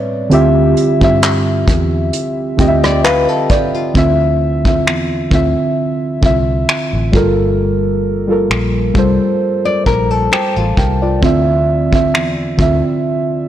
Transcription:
Already playing: synth keys A2 G3 C4 B4 C#5 D5
0.30 fingered electric bass D2, synth keys D3 C4 F4 G4, closed hi-hat
0.34 synth keys E5
0.77 closed hi-hat
1.00 fingered electric bass G2, synth keys D3 C4 F4 G4, kick
1.04 synth keys E5
1.22 clap, closed hi-hat
1.68 fingered electric bass E2, kick, closed hi-hat
2.13 closed hi-hat
2.57 fingered electric bass D2, synth keys D3 C4 F4 G4 G5, kick, closed hi-hat
2.62 synth keys D#5
2.68 synth keys E5
2.84 nylon-string guitar D5, cross-stick
3.04 nylon-string guitar B4, synth keys F5, clap, closed hi-hat
3.29 nylon-string guitar A4
3.49 nylon-string guitar G4, synth keys D5, kick, closed hi-hat
3.74 nylon-string guitar F4
3.94 fingered electric bass D2, synth keys D3 C4 F4, kick
3.98 synth keys E5
4.64 synth keys D3 C4 F4, kick
4.68 synth keys E5
4.87 fingered electric bass E2, finger snap
5.30 fingered electric bass D2, synth keys D3 C4 F4, kick
5.35 synth keys E5
6.21 fingered electric bass C2, synth keys D3 C4 F4, kick
6.26 synth keys E5
6.69 finger snap
6.93 fingered electric bass A1
7.12 fingered electric bass G1, synth keys G3 F4 A4, kick
7.16 synth keys A#4
8.28 synth keys G3 F4 A4
8.32 synth keys A#4
8.50 fingered electric bass A#1, finger snap
8.94 fingered electric bass C2, synth keys G3 F4 A4, kick
8.99 synth keys C5
9.65 nylon-string guitar D5
9.86 fingered electric bass A#1, nylon-string guitar A#4, kick
10.11 nylon-string guitar A4
10.32 nylon-string guitar G4, synth keys C5 A5, finger snap
10.56 fingered electric bass A1, nylon-string guitar F4
10.77 fingered electric bass C2, synth keys A#4 G5, kick
11.02 synth keys F4 D5
11.21 fingered electric bass D2, synth keys D3 C4 F4, kick
11.25 synth keys E5
11.91 synth keys D3 C4 F4, kick
11.95 synth keys E5
12.14 fingered electric bass E2, finger snap
12.57 fingered electric bass D2, synth keys D3 C4 F4, kick
12.62 synth keys E5

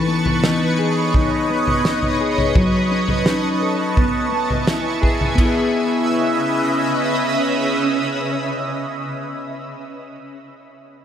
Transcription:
Already playing: clean electric guitar E3 D#4, ambient pad B4 C#5 D#5 C#6
0.08 clean electric guitar B3
0.26 floor tom
0.43 clean electric guitar D#4, snare
0.79 clean electric guitar G#4
1.14 clean electric guitar D#4, kick, floor tom
1.50 clean electric guitar B3
1.67 floor tom
1.85 clean electric guitar D#4, snare
2.02 floor tom
2.21 clean electric guitar G#4
2.38 floor tom
2.55 clean electric guitar F#3, ambient pad A5, kick, floor tom
2.91 clean electric guitar C#4
3.08 floor tom
3.26 clean electric guitar D#4, snare
3.62 clean electric guitar A4
3.96 clean electric guitar B3, ambient pad E5 G#5, kick, floor tom
4.32 clean electric guitar B3
4.50 floor tom
4.67 clean electric guitar E4, snare
5.02 clean electric guitar G#4, kick
5.21 floor tom
5.35 ambient pad C#3 C#4 B4 D#5 E5, clean electric guitar B3, kick, ride
5.41 clean electric guitar E4
5.45 clean electric guitar G#4

